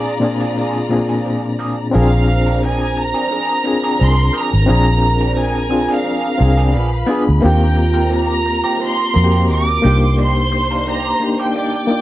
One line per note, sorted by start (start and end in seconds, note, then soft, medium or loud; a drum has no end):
0.00 0.20 A#2 medium
0.00 0.21 C4 medium
0.00 0.22 D4 medium
0.00 0.23 F4 medium
0.00 1.90 F4 medium
0.00 0.24 G#4 loud
0.00 2.19 G#4 medium
0.00 1.27 D5 medium
0.00 1.90 D5 medium
0.00 1.90 A#5 loud
0.20 0.65 A#2 medium
0.20 0.65 C4 medium
0.20 0.66 D4 medium
0.20 0.66 F4 medium
0.20 muted clean electric guitar stroke soft
0.24 0.67 G#4 loud
0.40 0.55 F3 soft
0.40 0.55 A#3 soft
0.40 0.55 D4 soft
0.40 0.55 G#4 medium
0.57 0.78 F3 medium
0.57 0.78 A#3 medium
0.57 0.78 D4 medium
0.57 0.78 G#4 medium
0.89 1.55 A#2 medium
0.89 1.55 C4 medium
0.89 1.56 D4 medium
0.89 1.56 F4 medium
0.89 1.57 G#4 medium
0.89 muted clean electric guitar stroke soft
1.09 1.23 F3 soft
1.09 1.24 A#3 soft
1.09 1.24 D4 soft
1.09 1.23 G#4 medium
1.24 1.46 F3 medium
1.24 1.43 A#3 medium
1.24 1.42 D4 medium
1.24 1.42 G#4 medium
1.43 muted clean electric guitar stroke soft
1.59 1.76 F3 medium
1.59 1.76 A#3 medium
1.59 1.76 D4 medium
1.59 1.76 G#4 medium
1.91 3.12 A#1 medium
1.91 2.15 F3 medium
1.91 2.80 C4 loud
1.91 2.12 C4 medium
1.91 2.81 D4 medium
1.91 2.12 D4 medium
1.91 2.81 F4 medium
1.91 2.11 G#4 medium
1.91 2.82 G#4 loud
1.91 6.71 A#4 medium
1.91 6.71 A#5 medium
1.97 2.60 F5 medium
2.28 4.94 C5 medium
2.28 muted clean electric guitar stroke soft
2.46 2.61 F3 soft
2.46 2.61 C4 medium
2.46 2.61 D4 medium
2.46 2.61 A#4 medium
2.63 2.84 F3 medium
2.63 2.84 C4 medium
2.63 2.84 D4 medium
2.63 2.84 G#4 medium
2.63 2.99 G#5 medium
2.97 4.01 A#5 loud
2.97 muted clean electric guitar stroke soft
3.14 3.29 F3 medium
3.14 3.29 C4 medium
3.14 3.30 D4 medium
3.14 3.29 G#4 medium
3.31 3.52 F3 medium
3.31 3.52 C4 medium
3.31 3.52 D4 medium
3.31 3.53 G#4 medium
3.64 4.30 C4 medium
3.64 4.30 D4 medium
3.64 4.31 F4 medium
3.64 4.31 G#4 medium
3.64 muted clean electric guitar stroke soft
3.84 3.98 F3 soft
3.84 3.99 C4 soft
3.84 3.98 D4 soft
3.84 3.98 G#4 medium
3.99 4.29 C2 medium
3.99 4.20 F3 medium
3.99 4.17 C4 medium
3.99 4.17 D4 medium
3.99 4.16 G#4 medium
4.04 4.36 C6 loud
4.18 muted clean electric guitar stroke soft
4.33 4.50 F3 medium
4.33 4.51 C4 medium
4.33 4.51 D4 medium
4.33 4.51 G#4 medium
4.33 5.38 A#5 loud
4.52 4.66 G#1 medium
4.52 muted clean electric guitar stroke soft
4.66 5.86 A#1 loud
4.66 4.89 F3 medium
4.66 5.32 C4 loud
4.66 4.86 C4 medium
4.66 5.33 D4 medium
4.66 4.85 D4 medium
4.66 5.33 F4 medium
4.66 4.85 G#4 medium
4.70 5.34 G#4 loud
4.86 muted clean electric guitar stroke soft
5.02 7.05 A#4 medium
5.02 muted clean electric guitar stroke soft
5.21 5.35 F3 soft
5.21 5.35 C4 soft
5.21 5.35 D4 medium
5.21 5.35 A#4 medium
5.36 5.58 F3 medium
5.36 5.58 C4 medium
5.36 5.58 D4 medium
5.36 5.58 G#4 medium
5.36 5.91 G#5 medium
5.69 6.14 C4 medium
5.69 6.15 D4 medium
5.69 6.15 F4 medium
5.69 7.05 F4 medium
5.69 muted clean electric guitar stroke soft
5.73 6.16 G#4 medium
5.89 6.03 F3 soft
5.89 6.03 C4 medium
5.89 6.03 D4 medium
5.89 6.04 G#4 medium
5.93 7.11 F5 medium
6.04 6.26 F3 medium
6.04 6.26 C4 medium
6.04 6.26 D4 medium
6.04 6.26 G#4 medium
6.38 6.75 C2 medium
6.38 6.73 C4 medium
6.38 6.74 D4 medium
6.38 6.75 F4 medium
6.38 6.75 G#4 medium
6.38 muted clean electric guitar stroke soft
6.58 6.71 F3 medium
6.58 6.72 C4 medium
6.58 6.71 D4 medium
6.58 6.72 G#4 medium
6.72 7.03 A#1 loud
6.72 6.94 F3 medium
6.72 6.91 B3 medium
6.72 6.91 D4 medium
6.72 6.90 G#4 medium
6.72 7.42 B4 medium
6.72 7.42 B5 medium
6.91 muted clean electric guitar stroke soft
7.06 7.24 F3 medium
7.06 7.30 B3 medium
7.06 7.25 B3 medium
7.06 7.24 D4 medium
7.06 7.31 D4 medium
7.06 7.74 D4 medium
7.06 7.32 F4 medium
7.06 7.24 G#4 medium
7.11 7.32 G#4 loud
7.25 7.41 D2 medium
7.25 muted clean electric guitar stroke soft
7.41 8.61 D#2 loud
7.41 7.63 D#3 medium
7.41 7.60 A#3 medium
7.41 8.30 A#3 loud
7.41 7.59 C4 medium
7.41 8.31 C4 medium
7.41 8.31 F4 medium
7.41 7.59 G4 medium
7.41 9.80 A#4 medium
7.41 9.80 A#5 loud
7.46 8.32 G4 loud
7.46 8.09 G5 medium
7.60 muted clean electric guitar stroke soft
7.76 10.14 F4 medium
7.76 muted clean electric guitar stroke soft
7.94 8.09 D#3 medium
7.94 8.09 A#3 medium
7.94 8.09 C4 medium
7.94 8.09 A#4 medium
8.10 8.32 D#3 medium
8.10 8.32 A#3 medium
8.10 8.32 C4 medium
8.10 8.32 G4 medium
8.15 8.78 A#5 loud
8.46 muted clean electric guitar stroke soft
8.64 8.78 D#3 medium
8.64 8.78 A#3 medium
8.64 8.79 C4 medium
8.64 8.79 G4 medium
8.79 9.01 D#3 medium
8.79 9.01 A#3 medium
8.79 9.01 C4 medium
8.79 9.02 G4 medium
8.85 9.51 C6 loud
9.14 9.50 F2 loud
9.14 9.79 A#3 medium
9.14 9.80 C4 medium
9.14 9.80 F4 medium
9.14 9.23 F#4 medium
9.14 10.14 A#4 medium
9.14 muted clean electric guitar stroke soft
9.24 9.84 G4 medium
9.32 9.47 D#3 soft
9.32 9.47 A#3 medium
9.32 9.47 C4 medium
9.32 9.47 G4 medium
9.48 9.78 D#2 loud
9.48 9.70 D#3 medium
9.48 9.66 A#3 medium
9.48 9.65 C4 medium
9.48 9.65 G4 medium
9.52 10.16 D6 loud
9.66 muted clean electric guitar stroke medium
9.82 11.11 C2 loud
9.82 10.00 D#3 medium
9.82 10.94 A#3 medium
9.82 10.00 A#3 medium
9.82 10.94 D4 medium
9.82 10.01 D4 medium
9.82 10.95 D#4 medium
9.82 10.00 G4 medium
9.82 10.96 G4 medium
9.82 11.53 C5 loud
9.82 11.53 C6 loud
10.17 10.39 D#3 medium
10.17 10.35 A#3 medium
10.17 10.35 D4 medium
10.17 10.34 G4 medium
10.22 10.85 C6 loud
10.36 muted clean electric guitar stroke soft
10.52 muted clean electric guitar stroke soft
10.71 10.85 D#3 soft
10.71 10.86 A#3 soft
10.71 10.86 D4 soft
10.71 10.85 A#4 medium
10.87 11.08 D#3 medium
10.87 11.08 A#3 medium
10.87 11.08 D4 medium
10.87 11.08 G4 medium
10.87 11.38 A#5 loud
11.20 11.64 A#3 medium
11.20 11.65 D4 medium
11.20 11.65 D#4 medium
11.20 11.66 G4 medium
11.20 muted clean electric guitar stroke soft
11.39 11.53 D#3 soft
11.39 11.54 A#3 soft
11.39 11.54 D4 medium
11.39 11.54 G4 medium
11.39 12.01 G5 medium
11.55 11.76 D#3 medium
11.55 11.77 A#3 medium
11.55 11.77 D4 medium
11.55 11.77 G4 medium
11.55 12.01 D5 medium
11.55 12.01 D6 loud
11.87 12.01 A#3 medium
11.87 12.01 D4 medium
11.87 12.01 D#4 medium
11.87 12.01 F4 medium
11.87 muted clean electric guitar stroke soft